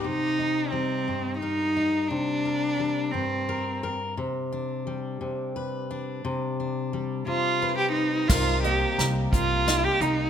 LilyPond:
<<
  \new Staff \with { instrumentName = "Ukulele" } { \time 6/8 \key c \minor \tempo 4. = 58 r2. | r2. | r2. | r2. |
bes'8 ees''8 bes''4 ees''8 bes''8 | }
  \new Staff \with { instrumentName = "Cello" } { \time 6/8 \key c \minor ees'4 c'4 ees'4 | d'4. c'4 r8 | r2. | r4. f'8. g'16 ees'8 |
f'8 g'8 r8 f'8. g'16 ees'8 | }
  \new Staff \with { instrumentName = "Steel-string acoustic guitar" } { \time 6/8 \key c \minor << { r8 ees'4. bes'8 ees'8 | r8 bes'4. bes'8 bes'8 | r8 d'4. b'8 d'8~ | d'8 d'4. b'4 |
ees'8 bes4 bes8 ees'8 bes8 | } \\ { c4 g8 g,4. | c4 g8 g,4. | c4 g8 c4. | c4 g8 c4. |
c4 g2 | } >> }
  \new Staff \with { instrumentName = "Upright bass" } { \clef bass \time 6/8 \key c \minor r2. | r2. | r2. | r2. |
c,4 c,8 c,4 c,8 | }
  \new DrumStaff \with { instrumentName = "Drums" } \drummode { \time 6/8 r4. r4. | r4. r4. | r4. r4. | r4. r4. |
<cymc bd sn>8 hh8 <hh sn>8 <hh bd>8 <hh sn>8 hh8 | }
>>